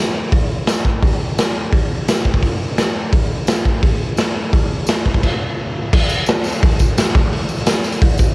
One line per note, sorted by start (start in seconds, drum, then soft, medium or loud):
0.32 kick loud
0.32 open hi-hat medium
0.67 snare loud
0.67 open hi-hat medium
0.67 tambourine medium
0.85 kick medium
1.02 kick loud
1.02 open hi-hat medium
1.38 snare loud
1.38 open hi-hat medium
1.38 tambourine medium
1.72 kick loud
1.72 open hi-hat medium
2.08 snare loud
2.08 open hi-hat medium
2.08 tambourine medium
2.25 kick medium
2.34 kick medium
2.43 kick medium
2.43 open hi-hat medium
2.78 snare loud
2.78 open hi-hat medium
2.78 tambourine medium
3.13 kick loud
3.13 open hi-hat medium
3.47 snare loud
3.47 open hi-hat medium
3.47 tambourine medium
3.65 kick medium
3.83 kick loud
3.83 open hi-hat medium
4.17 snare loud
4.17 open hi-hat medium
4.17 tambourine loud
4.53 kick loud
4.53 open hi-hat medium
4.87 snare loud
4.87 open hi-hat medium
4.87 tambourine loud
5.06 kick medium
5.14 kick medium
5.23 kick loud
5.23 crash loud
5.93 kick loud
5.93 crash loud
6.09 tambourine medium
6.18 tambourine soft
6.26 snare loud
6.26 open hi-hat medium
6.26 tambourine loud
6.44 tambourine medium
6.52 tambourine medium
6.63 kick loud
6.63 open hi-hat medium
6.71 tambourine soft
6.79 kick medium
6.79 tambourine medium
6.98 snare loud
6.98 open hi-hat medium
6.98 tambourine loud
7.15 kick loud
7.33 open hi-hat medium
7.49 tambourine medium
7.58 tambourine soft
7.66 snare loud
7.66 open hi-hat medium
7.66 tambourine loud
7.84 tambourine medium
7.92 tambourine medium
8.02 kick loud
8.02 open hi-hat medium
8.11 tambourine soft
8.18 kick loud
8.18 tambourine medium